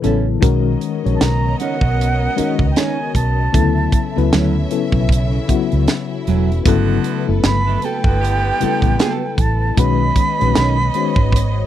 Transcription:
Already playing: C#3 F#3 B3 D#4 E4 G#4 A4 B4
0.02 A1 C#3 F#3 B3 C#4 E4 A4, closed hi-hat
0.06 A4
0.41 B1 D#3 G#3 B3 C#4 F#4 A#4 C#5 D#5, kick, closed hi-hat
0.81 closed hi-hat
1.03 A#1 C#3 G#3 C#4 F#4 C#5, closed hi-hat
1.10 D#3
1.15 A5
1.21 B1 A#5, snare, closed hi-hat
1.60 C#4 D#4 A#4 F#5, closed hi-hat
1.81 B1, kick
2.01 closed hi-hat
2.36 D#3 G#3 C#4 D#4 F#4 A#4, muted fingered electric bass stroke, closed hi-hat
2.59 C#2, kick
2.71 G5
2.76 C#4 D#4 A#4 G#5, snare, closed hi-hat
3.15 B1 A5, kick, closed hi-hat
3.53 D2 C#3 F#3 B3 C#4 E4 A4 E5, kick, closed hi-hat
3.92 kick, closed hi-hat
4.16 C#2 C#3 F#3 B3 E4 B4, closed hi-hat
4.33 D2 F#3 C#4 E4, snare, closed hi-hat
4.71 C#3 F#3 B3 E4 A4, closed hi-hat
4.92 B1, kick
5.09 kick, closed hi-hat
5.48 C#3 F#3 B3 E4 F#4, muted fingered electric bass stroke, kick, closed hi-hat
5.72 C#2, closed hi-hat
5.88 muted nylon-string guitar stroke, snare, closed hi-hat
6.27 E1 F#3 C#4 E4, closed hi-hat
6.52 closed hi-hat
6.65 G1 C#3 D3 F#3 A3 B3 E4 F#4 A4 B4, kick, closed hi-hat
7.04 closed hi-hat
7.28 F#1 C#3 F#3 B3 E4 A4
7.44 G1 B5, snare, closed hi-hat
7.67 B2 A3 D4
7.82 B3 F#4 A4 G5, closed hi-hat
8.04 G1 D3 B3 F#4, kick
8.21 D3 B3 G4, closed hi-hat
8.60 C#3 G3 A3 B3 E4 F#4 A4, muted fingered electric bass stroke, closed hi-hat
8.67 B3
8.82 A1, kick, closed hi-hat
8.99 B3 F#4 A4, snare, closed hi-hat
9.38 A1 A5, kick, closed hi-hat
9.77 B1 D#3 G#3 B3 C#4 F#4 B4 C#5 D#5 B5, kick, closed hi-hat
10.16 kick, closed hi-hat
10.40 A#1 D#3 G#3 C#4 F#4 B4, closed hi-hat
10.55 B1 C#4 D#4 A#4, snare, closed hi-hat
10.94 D#3 G#3 C#4 F#4 C5, closed hi-hat
11.03 C#5
11.16 G#1, kick
11.32 kick, closed hi-hat

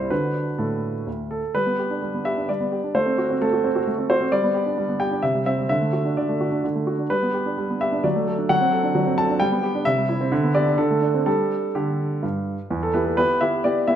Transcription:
Already playing: C2 G3 E4 G4 C5 D5
0.10 D3 D4 F#4 B4
0.58 A2 A4
1.07 D2
1.31 A4
1.55 G3 B4
1.66 B3
1.79 G4
1.91 D4
2.02 G3
2.14 B3
2.25 G4 E5
2.37 D4
2.49 G3 D5
2.60 B3
2.72 G4
2.84 D4
2.95 A3 C5
3.06 C4
3.18 F#4
3.30 C4
3.42 A3 A4
3.53 F#4
3.64 C4
3.76 F#4
3.87 A3
3.98 C4
4.10 F#4 C5
4.21 C4
4.32 G3 D5
4.44 B3
4.54 G4
4.66 D4
4.78 G3
4.89 B3
5.00 G4 G5
5.11 D4
5.22 C3 E5
5.34 G3
5.46 C4 E5
5.58 G3
5.69 D3 E5
5.81 A3
5.93 F#4
6.05 D4
6.17 D3 D5
6.29 A3
6.41 F#4
6.52 D4
6.64 D3
6.75 A3
6.87 F#4
6.99 D4
7.10 G3 B4
7.23 B3
7.34 G4
7.46 D4
7.58 G3
7.70 B3
7.81 G4 E5
7.92 D4
8.04 F#3 D5
8.16 A3
8.28 A4
8.38 D4
8.49 F#3 F#5
8.61 C4
8.72 A4
8.83 D4
8.95 F#3
9.06 C4
9.18 A4 A5
9.30 D4
9.40 G3 G5
9.52 B3
9.63 G4
9.75 D4
9.85 C3 E5
9.97 G3
10.09 E4
10.21 C4
10.32 D3
10.43 B3
10.55 G4 D5
10.67 D4
10.78 D3 A4
10.91 A3
11.02 D4
11.14 C4
11.26 G3 D4 G4 A4
11.75 D3 G4
12.23 G2
12.70 E2
12.83 A4
12.94 B3 E4 G4 B4
13.05 A4
13.17 B3 E4 G4 B4
13.41 B3 E4 G4 E5
13.64 B3 E4 G4 D5
13.87 B3 E4 G4 E5

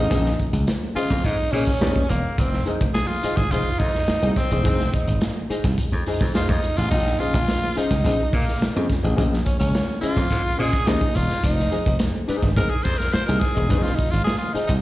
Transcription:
Already playing: D#4
0.10 A#1 C#4 G#4 C5 D#5, kick, closed hi-hat
0.25 snare
0.39 kick, closed hi-hat
0.53 C#2, closed hi-hat
0.67 snare, closed hi-hat
0.95 C#4 F4 G#4 C5 D#5, muted slap bass stroke, closed hi-hat
1.10 F2, kick, snare
1.24 G#2 D#4, kick, closed hi-hat
1.51 A#2 C#4 G#4 C5 D#5, open hi-hat
1.67 kick, snare
1.81 D#2 C#4 G#4 C5 D#5, snare, closed hi-hat
1.96 kick
2.09 E1 A#3, closed hi-hat
2.38 F1 C4, kick, closed hi-hat
2.53 snare
2.65 D#4 G#4 C5 D#5, closed hi-hat
2.81 F1, kick, closed hi-hat
2.94 G#4, snare, closed hi-hat
3.07 F4
3.23 D#4 G#4 C5 D#5, muted slap bass stroke, closed hi-hat
3.36 G#1 G#4, kick, snare
3.51 F1 D#4 F4 G#4 C5 D#5, kick, closed hi-hat
3.79 F2 D#4, kick, open hi-hat
3.95 snare
4.08 muted slap bass stroke, snare, closed hi-hat
4.22 C2 D#4 G#4 C5 D#5
4.36 C4, kick, snare, closed hi-hat
4.50 E1 D#4 G#4 C5 D#5, closed hi-hat
4.64 F1 D#4 G#4 C5 D#5, kick, closed hi-hat
4.80 snare
4.93 D#4, kick, closed hi-hat
5.08 G#1, closed hi-hat
5.21 snare, closed hi-hat
5.50 D#4 G#4 C5 D#5, muted slap bass stroke, closed hi-hat
5.64 C2, kick, snare
5.78 kick, closed hi-hat
5.92 F2
6.06 D#4 G#4 C5 D#5, open hi-hat
6.21 F2, kick, snare
6.34 D#4 F4 G#4 C5 D#5, snare, closed hi-hat
6.49 F2 D#4, kick
6.62 closed hi-hat
6.76 A1 F4, closed hi-hat
6.91 A#1 D#4, kick, closed hi-hat
7.06 snare
7.19 C#4 F4 G#4 C5 D#5, closed hi-hat
7.34 A#1, kick, closed hi-hat
7.48 snare, closed hi-hat
7.76 C#4 D#4 G#4 C5 D#5, muted slap bass stroke, closed hi-hat
7.91 C#2, kick, snare
8.04 A#1 C#4 G#4 C5 D#5, kick, closed hi-hat
8.33 A#2 A#3, kick, open hi-hat
8.48 snare
8.61 muted slap bass stroke, snare, closed hi-hat
8.75 F2 C#4 G#4 C5 D#5
8.90 kick, snare, closed hi-hat
9.03 A1 C#4 G#4 C5 D#5
9.16 A#1 C#4 G#4 C5 D#5, kick, closed hi-hat
9.33 snare
9.45 C#4, kick, closed hi-hat
9.59 C#2 C#4, closed hi-hat
9.74 snare, closed hi-hat
10.01 C#4 F4 G#4 C5 D#5, muted slap bass stroke, closed hi-hat
10.17 F2, kick, snare
10.31 G#2, kick, closed hi-hat
10.58 A#2 C#4 G#4 C5 D#5, open hi-hat
10.73 kick, snare
10.86 D#2 C#4 D#4 G#4 C5 D#5, snare, closed hi-hat
11.01 kick
11.15 E1 F4, closed hi-hat
11.30 snare, closed hi-hat
11.44 F1 D#4, kick, closed hi-hat
11.59 snare
11.71 D#4 G#4 C5 D#5, closed hi-hat
11.86 F1, kick, closed hi-hat
11.99 snare, closed hi-hat
12.28 D#4 G#4 C5 D#5, muted slap bass stroke, closed hi-hat
12.43 G#1, kick, snare
12.56 F1 D#4 G#4 A#4 C5 D#5, kick, closed hi-hat
12.70 G#4
12.83 F2 C5, kick, open hi-hat
12.97 A#4, snare
13.12 C5, muted slap bass stroke, snare, closed hi-hat
13.26 C2 D#4 G#4 A#4 C5 D#5
13.40 G#4, kick, snare, closed hi-hat
13.55 E1 D#4 G#4 C5 D#5, closed hi-hat
13.69 F1 D#4 G#4 C5 D#5, kick, closed hi-hat
13.82 F4, snare
13.95 D#4, kick, closed hi-hat
14.11 G#1 F4
14.24 G#4, snare, closed hi-hat
14.38 F4
14.53 D#4 G#4 C5 D#5, muted slap bass stroke, closed hi-hat
14.67 C2 D#4, kick, snare

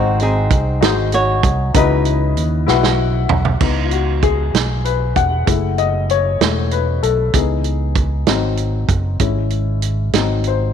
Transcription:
Already playing: G#1 G#2 C4 D#4 F#4 G#4 C5
0.20 C4 D#4 G#4, closed hi-hat
0.51 C2, kick, closed hi-hat
0.81 G#1 D#4 F#4 G#4 C5 D#5, snare, closed hi-hat
1.12 F#4 C#5, closed hi-hat
1.43 C2, kick, closed hi-hat
1.74 C#2 C#3 D#4 E4 F#4 B4 D#5, kick, closed hi-hat
1.80 E3
2.05 closed hi-hat
2.37 D#2, closed hi-hat
2.67 B1 E4 F#4 B4 F#5, snare
2.83 snare
3.29 B1, floor tom
3.45 floor tom
3.60 C#2 E3 B3 D#4, kick, crash
3.85 F4
3.91 F#4, closed hi-hat
4.23 G#4, kick, closed hi-hat
4.54 B1, snare, closed hi-hat
4.85 B4, closed hi-hat
5.16 E1 F#5, kick, closed hi-hat
5.46 F#1 A3 E4 G#4, kick, closed hi-hat
5.78 D#5, closed hi-hat
6.10 C#5, closed hi-hat
6.41 E1 G#3 A3 E4, snare, closed hi-hat
6.71 B4, closed hi-hat
7.03 B1 A4, closed hi-hat
7.34 C#2 E3 B3 D#4 G#4, kick, closed hi-hat
7.64 closed hi-hat
7.95 kick, closed hi-hat
8.27 G#1 F#3 C4 D#4, snare, closed hi-hat
8.57 closed hi-hat
8.89 F#1, kick, closed hi-hat
9.20 G#1 G#3 C#4 E4, kick, closed hi-hat
9.50 closed hi-hat
9.82 closed hi-hat
10.13 G#1 F#3 C4 D#4, snare, closed hi-hat
10.44 C5, closed hi-hat

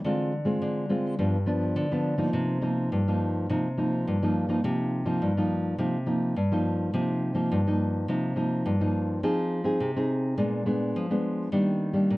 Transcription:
0.04 D3 G#3 C4 F4
0.45 G#3 C4 F4
0.62 D3
0.90 G#3 C4 F4
1.19 G2 F3 B3 D4
1.46 F3 B3 D4
1.76 D3
1.91 F3 B3 D4
2.18 F3 A#3 D#4
2.33 C3
2.62 F3 A#3 D#4
2.92 G2
3.08 F3 A#3 D#4
3.49 C3 F3 A#3 D#4
3.77 F3 A#3 D#4
4.07 G2
4.22 F3 A#3 D#4
4.48 F3 A#3 D#4
4.63 C3 F3 A#3 D#4
5.05 F3 A#3 D#4
5.21 G2
5.37 F3 A#3 D#4
5.78 C3 F3 A#3 D#4
6.06 F3 A#3 D#4
6.36 G2
6.52 F3 A#3 D#4
6.94 C3 F3 A#3 D#4
7.35 F3 A#3 D#4
7.52 G2
7.67 F3 A#3 D#4
8.08 C3 F3 A#3 D#4
8.36 F3 A#3 D#4
8.66 G2
8.81 F3 A#3 D#4
9.23 F3 C4 D#4 G#4
9.64 C4 D#4 G#4
9.80 C3
9.96 C4 D#4 G#4
10.37 A#2 G#3 B3 D4
10.66 G#3 B3 D4
10.96 F3
11.11 G#3 B3 D4
11.52 D#3 G3 A#3 D4
11.94 G3 A#3 D4
12.11 A#2

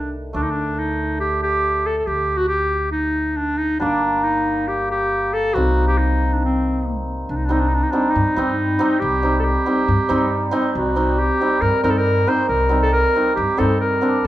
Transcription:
Already playing: C2 D#3 G3 A3 D4
0.33 D2 A3 D4 D5
0.43 D#4
0.51 D4
0.78 D#4
1.20 G4
1.43 G4
1.86 A4
1.97 A4
2.06 D2 G4
2.37 F#4
2.48 G4
2.91 D#4
3.37 D4
3.58 D#4
3.79 G1 G3 A#3 D4 D5
4.24 D#4
4.68 G4
4.91 G4
5.33 A4
5.54 C2 G3 C4 D#4 F#4
5.88 G4
5.98 D#4
6.33 D4
6.45 C4
7.29 C2 D4
7.36 D#4
7.45 G3 D4
7.50 C4 D#4
7.60 D4
7.68 D#4
7.74 D4
7.83 D#4
7.90 G3 C4 D4 D#4
8.10 D#4
8.16 G2
8.36 G2 G3 C4 D#4
8.79 G3 C4 D#4
8.99 C2 G4
9.23 G3 C4 D#4
9.40 G4 A4
9.66 G3 C4 D#4
9.88 G2
10.09 G2 G3 C4 D#4
10.51 G3 C4 D#4
10.75 C2 F#4
10.96 G3 C4 D#4
11.19 G4
11.41 G3 C4 D#4
11.61 G2 A#4
11.83 G2 G3 C4 D#4 A#4
11.90 A4
11.97 A#4
12.27 G3 C4 D#4 C5
12.49 C2 A#4
12.69 G3 C4 D#4
12.81 A4 A#4
12.92 A#4
13.15 G3 C4 D#4
13.36 G2 G4
13.57 G2 G3 C4 D#4 A4
13.80 A#4
14.01 G3 C4 D4

